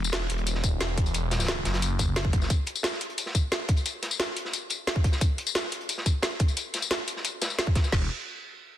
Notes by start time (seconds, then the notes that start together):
Already playing: E1
0.04 tambourine
0.12 snare, closed hi-hat
0.21 snare
0.30 E1, closed hi-hat
0.38 closed hi-hat
0.47 closed hi-hat, tambourine
0.55 snare
0.64 kick, closed hi-hat, tambourine
0.81 E1, snare, closed hi-hat, tambourine
0.98 kick, closed hi-hat
1.06 closed hi-hat, tambourine
1.14 closed hi-hat, tambourine
1.31 snare, closed hi-hat, tambourine
1.39 snare, closed hi-hat, tambourine
1.44 snare, closed hi-hat
1.48 snare, closed hi-hat
1.65 F#1, snare, closed hi-hat
1.74 snare, closed hi-hat
1.82 closed hi-hat, tambourine
1.99 kick, closed hi-hat, tambourine
2.16 snare, closed hi-hat, tambourine
2.25 kick
2.33 kick, closed hi-hat
2.42 snare, tambourine
2.50 kick, closed hi-hat, tambourine
2.66 closed hi-hat
2.76 tambourine
2.83 snare, closed hi-hat, tambourine
2.92 snare
3.01 closed hi-hat
3.10 closed hi-hat
3.18 closed hi-hat, tambourine
3.26 snare
3.34 kick, closed hi-hat, tambourine
3.52 snare, closed hi-hat, tambourine
3.68 kick, closed hi-hat
3.76 closed hi-hat, tambourine
3.86 closed hi-hat, tambourine
4.03 snare, closed hi-hat
4.11 closed hi-hat, tambourine
4.20 snare, closed hi-hat
4.36 closed hi-hat
4.45 snare
4.53 closed hi-hat, tambourine
4.70 closed hi-hat, tambourine
4.87 snare, closed hi-hat, tambourine
4.96 kick
5.04 kick, closed hi-hat
5.12 snare, tambourine
5.21 kick, closed hi-hat, tambourine
5.38 closed hi-hat
5.47 tambourine
5.55 snare, closed hi-hat, tambourine
5.64 snare
5.72 closed hi-hat
5.81 closed hi-hat
5.89 closed hi-hat, tambourine
5.98 snare
6.06 kick, closed hi-hat, tambourine
6.22 snare, closed hi-hat, tambourine
6.39 kick, closed hi-hat
6.48 closed hi-hat, tambourine
6.57 closed hi-hat, tambourine
6.74 snare, closed hi-hat, tambourine
6.82 closed hi-hat, tambourine
6.91 snare, closed hi-hat, tambourine
7.07 closed hi-hat, tambourine
7.16 snare
7.24 closed hi-hat, tambourine
7.41 snare, closed hi-hat, tambourine
7.50 tambourine
7.59 snare, closed hi-hat, tambourine
7.67 kick
7.75 kick, snare, closed hi-hat
7.83 snare, tambourine
7.92 E1, kick, snare, crash